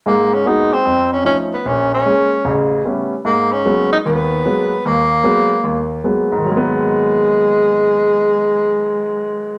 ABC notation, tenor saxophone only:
X:1
M:4/4
L:1/8
Q:"Swing" 1/4=151
K:G#m
V:1 name="Tenor saxophone"
A, C D ^B,2 _D D =B, | C C4 z3 | A, C2 D B,4 | A,6 z2 |
G,8- | G,8 |]